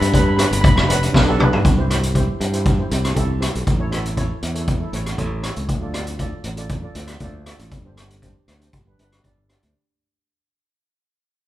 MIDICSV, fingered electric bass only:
0, 0, Header, 1, 2, 480
1, 0, Start_track
1, 0, Key_signature, 0, "major"
1, 0, Tempo, 506329
1, 1552, Time_signature, 4, 2, 24, 8
1, 10875, End_track
2, 0, Start_track
2, 0, Title_t, "Fingered electric bass"
2, 0, Program_c, 0, 33
2, 13, Note_on_c, 0, 43, 103
2, 402, Note_off_c, 0, 43, 0
2, 485, Note_on_c, 0, 31, 90
2, 680, Note_off_c, 0, 31, 0
2, 726, Note_on_c, 0, 29, 96
2, 1015, Note_off_c, 0, 29, 0
2, 1084, Note_on_c, 0, 35, 102
2, 1473, Note_off_c, 0, 35, 0
2, 1566, Note_on_c, 0, 36, 80
2, 2151, Note_off_c, 0, 36, 0
2, 2280, Note_on_c, 0, 43, 83
2, 2670, Note_off_c, 0, 43, 0
2, 2764, Note_on_c, 0, 36, 98
2, 2955, Note_off_c, 0, 36, 0
2, 2998, Note_on_c, 0, 36, 94
2, 3293, Note_off_c, 0, 36, 0
2, 3369, Note_on_c, 0, 35, 89
2, 3458, Note_off_c, 0, 35, 0
2, 3485, Note_on_c, 0, 33, 78
2, 4071, Note_off_c, 0, 33, 0
2, 4197, Note_on_c, 0, 40, 81
2, 4589, Note_off_c, 0, 40, 0
2, 4674, Note_on_c, 0, 33, 91
2, 4870, Note_off_c, 0, 33, 0
2, 4911, Note_on_c, 0, 33, 90
2, 5210, Note_off_c, 0, 33, 0
2, 5278, Note_on_c, 0, 37, 90
2, 5372, Note_off_c, 0, 37, 0
2, 5393, Note_on_c, 0, 38, 83
2, 5984, Note_off_c, 0, 38, 0
2, 6106, Note_on_c, 0, 33, 78
2, 6503, Note_off_c, 0, 33, 0
2, 6590, Note_on_c, 0, 38, 86
2, 6788, Note_off_c, 0, 38, 0
2, 6830, Note_on_c, 0, 38, 90
2, 7130, Note_off_c, 0, 38, 0
2, 7201, Note_on_c, 0, 33, 84
2, 7294, Note_off_c, 0, 33, 0
2, 7315, Note_on_c, 0, 31, 70
2, 7907, Note_off_c, 0, 31, 0
2, 8038, Note_on_c, 0, 38, 71
2, 8234, Note_off_c, 0, 38, 0
2, 8284, Note_on_c, 0, 31, 77
2, 8478, Note_off_c, 0, 31, 0
2, 8527, Note_on_c, 0, 31, 88
2, 8720, Note_off_c, 0, 31, 0
2, 8762, Note_on_c, 0, 31, 84
2, 9059, Note_off_c, 0, 31, 0
2, 9132, Note_on_c, 0, 38, 79
2, 9222, Note_off_c, 0, 38, 0
2, 10875, End_track
0, 0, End_of_file